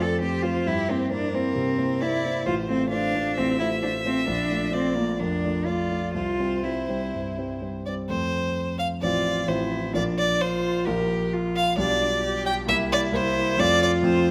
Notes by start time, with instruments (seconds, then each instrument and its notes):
Already playing: grand piano F2, violin D5
0.00 grand piano A3 C4 C5, cello A4
0.21 grand piano A3 C4 C5, cello G4, violin C5
0.43 grand piano A3 C4 C5, cello F4
0.66 grand piano G2, cello E4, violin G4
0.89 grand piano A#3 E4 C5, cello C4
1.10 grand piano A#3 E4 C5, cello D4, violin A#4
1.33 grand piano A#3 E4 C5, cello C4
1.55 grand piano C3
1.78 grand piano A#3 E4 C5
2.01 grand piano A#3 E4 C5, cello E4, violin D5
2.24 grand piano A#3 E4 C5
2.46 grand piano A1, cello F4, violin C5
2.68 grand piano A3 F4 C5, cello C4
2.90 grand piano A3 F4 C5, cello D4, violin F5
3.15 grand piano A3 F4 C5
3.36 grand piano A1, cello C4, violin E5
3.59 grand piano A3 F4 C5, cello E4
3.82 grand piano A3 F4 C5, cello D4
4.05 grand piano A3 F4 C5, cello C4
4.28 grand piano A#1, cello D4
4.51 grand piano A3 F4 D5
4.73 grand piano A3 F4 D5, cello C4, violin D5
4.94 grand piano A3 F4 D5, cello A#3
5.20 grand piano F2, cello D4, violin A#4
5.44 grand piano A3 F4 D5
5.65 grand piano A3 F4 D5, cello F4, violin D5
5.91 grand piano A3 F4 D5
6.14 grand piano C2, cello F4, violin C5
6.39 grand piano G3 C4 C5
6.63 grand piano G3 C4 C5, cello E4
6.89 grand piano G3 C4 C5
7.13 grand piano G2
7.38 grand piano G3 C4 C5
7.62 grand piano G3 C4 C5
7.86 grand piano G3 C4 C5, violin D5
8.09 grand piano F2 A3 C4 C5, violin C5
8.79 violin F5
9.02 grand piano A1 F3 C4 C5, cello F4, violin D5
9.48 grand piano A1 F3 C4 C5, cello E4, violin C5
9.94 grand piano A#1 F3 F4 A#4, cello D4, violin D5
10.18 violin D5
10.41 cello F4, violin C5
10.85 grand piano A#1 F3 F4 A#4, cello G4, violin A#4
11.33 cello F4
11.56 violin F5
11.78 grand piano B1 G3 F4 G4, cello D4, violin D5
12.23 cello G4
12.46 violin G5
12.67 grand piano C2 A#3 E4 G4, cello E4, violin E5
12.92 violin D5
13.12 grand piano C2 A#3 E4 G4, violin C5
13.57 grand piano F2 A3 C4 F4, cello F4, violin D5
13.83 violin D5
14.03 grand piano F2 A3 C4 F4, violin C5